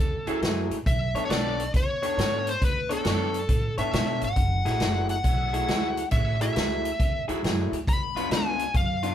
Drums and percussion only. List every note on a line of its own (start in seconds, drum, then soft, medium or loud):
0.27 closed hi-hat soft
0.42 snare medium
0.42 closed hi-hat medium
0.71 closed hi-hat medium
0.86 kick loud
0.86 closed hi-hat medium
1.15 closed hi-hat medium
1.30 snare medium
1.30 closed hi-hat medium
1.59 closed hi-hat medium
1.74 kick loud
1.74 closed hi-hat medium
2.03 closed hi-hat medium
2.19 snare medium
2.19 closed hi-hat medium
2.47 closed hi-hat medium
2.62 kick loud
2.62 closed hi-hat medium
2.90 closed hi-hat medium
3.05 snare loud
3.05 closed hi-hat medium
3.34 closed hi-hat medium
3.49 kick loud
3.49 closed hi-hat medium
3.78 closed hi-hat medium
3.93 snare loud
3.93 closed hi-hat medium
4.21 closed hi-hat medium
4.36 kick loud
4.36 closed hi-hat medium
4.66 snare soft
4.66 closed hi-hat medium
4.80 snare loud
4.80 closed hi-hat medium
5.09 closed hi-hat medium
5.24 kick loud
5.24 closed hi-hat medium
5.54 closed hi-hat medium
5.68 snare medium
5.68 closed hi-hat medium
5.97 closed hi-hat medium
6.11 kick loud
6.11 closed hi-hat medium
6.41 closed hi-hat medium
6.56 snare loud
6.56 closed hi-hat medium
6.85 closed hi-hat medium
7.00 kick loud
7.00 closed hi-hat medium
7.29 closed hi-hat medium
7.44 snare medium
7.44 closed hi-hat medium
7.73 closed hi-hat medium
7.88 kick loud
7.88 closed hi-hat medium
8.17 closed hi-hat medium
8.31 snare loud
8.31 closed hi-hat medium
8.59 closed hi-hat medium
8.74 kick loud
8.74 closed hi-hat medium
9.03 closed hi-hat medium